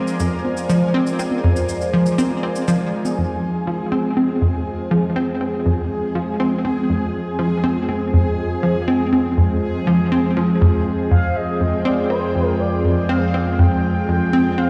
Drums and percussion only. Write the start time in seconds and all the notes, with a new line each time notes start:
0.07 cabasa
0.20 cabasa
0.45 high conga
0.57 cabasa
0.70 cabasa
1.07 cabasa
1.19 cabasa
1.32 high conga
1.56 cabasa
1.69 cabasa
1.81 cabasa
2.06 cabasa
2.18 high conga, cabasa
2.56 cabasa
2.68 cabasa
3.05 high conga, cabasa